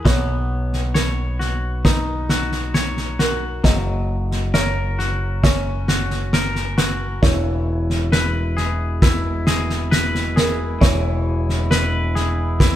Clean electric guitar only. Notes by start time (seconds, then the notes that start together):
0.05 B3
0.94 C#5
1.39 F#4
1.85 D#4
2.30 F#4
2.74 C#5
3.19 F#4
3.64 F#3
4.54 A#4
4.99 F#4
5.43 C#4
5.89 F#4
6.34 A#4
6.78 F#4
7.23 E3
8.12 B4
8.57 G#4
9.02 E4
9.47 G#4
9.91 B4
10.36 G#4
10.81 E3
11.71 B4
12.15 G#4
12.61 E4